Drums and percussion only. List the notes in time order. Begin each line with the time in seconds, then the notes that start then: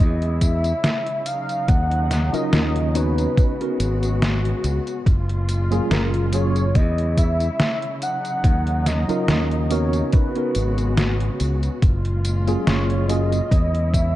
0.22 closed hi-hat
0.41 kick, closed hi-hat, tambourine
0.64 closed hi-hat, tambourine
0.84 snare, closed hi-hat, tambourine
1.07 closed hi-hat
1.26 closed hi-hat, tambourine
1.49 closed hi-hat, tambourine
1.68 kick, closed hi-hat, tambourine
1.91 closed hi-hat
2.11 snare, closed hi-hat, tambourine
2.34 closed hi-hat, tambourine
2.53 snare, closed hi-hat, tambourine
2.76 closed hi-hat
2.95 closed hi-hat, tambourine
3.18 closed hi-hat, tambourine
3.37 kick, closed hi-hat, tambourine
3.61 closed hi-hat
3.80 closed hi-hat, tambourine
4.03 closed hi-hat, tambourine
4.22 snare, closed hi-hat, tambourine
4.45 closed hi-hat
4.64 closed hi-hat, tambourine
4.87 closed hi-hat, tambourine
5.06 kick, closed hi-hat, tambourine
5.29 closed hi-hat
5.49 closed hi-hat, tambourine
5.72 closed hi-hat, tambourine
5.91 snare, closed hi-hat, tambourine
6.14 closed hi-hat
6.33 closed hi-hat, tambourine
6.56 closed hi-hat, tambourine
6.75 kick, closed hi-hat, tambourine
6.98 closed hi-hat
7.17 kick, closed hi-hat, tambourine
7.40 closed hi-hat, tambourine
7.60 snare, closed hi-hat, tambourine
7.82 closed hi-hat
8.02 closed hi-hat, tambourine
8.25 closed hi-hat, tambourine
8.44 kick, closed hi-hat, tambourine
8.67 closed hi-hat
8.86 snare, closed hi-hat, tambourine
9.09 closed hi-hat, tambourine
9.28 snare, closed hi-hat, tambourine
9.51 closed hi-hat
9.71 closed hi-hat, tambourine
9.93 closed hi-hat, tambourine
10.12 kick, closed hi-hat, tambourine
10.35 closed hi-hat
10.55 closed hi-hat, tambourine
10.78 closed hi-hat, tambourine
10.97 snare, closed hi-hat, tambourine
11.20 closed hi-hat
11.40 closed hi-hat, tambourine
11.63 closed hi-hat, tambourine
11.82 kick, closed hi-hat, tambourine
12.05 closed hi-hat
12.25 closed hi-hat, tambourine
12.48 closed hi-hat, tambourine
12.67 snare, closed hi-hat, tambourine
12.90 closed hi-hat
13.09 closed hi-hat, tambourine
13.32 closed hi-hat, tambourine
13.51 kick, closed hi-hat, tambourine
13.75 closed hi-hat
13.94 kick, closed hi-hat, tambourine